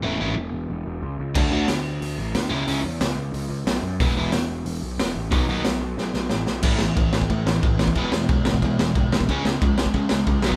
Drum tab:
CC |----------------|x---------------|----------------|----------------|
HH |----------------|----o---o---o---|o---o---o---o---|o---o---o---o---|
SD |----------------|----o-------o---|----o-------o---|----o-------o---|
BD |----------------|o---------------|----------------|o---------------|

CC |----------------|x---x---x---x---|x---x---x---x---|x---x---x---x---|
HH |o---o-----------|----------------|----------------|----------------|
SD |----o---o-o-o-o-|--o---o---o---o-|--o---o---o---o-|--o---o---o---o-|
BD |o---------------|o---o--oo---o--o|o---o--oo---o--o|o---o--oo---o--o|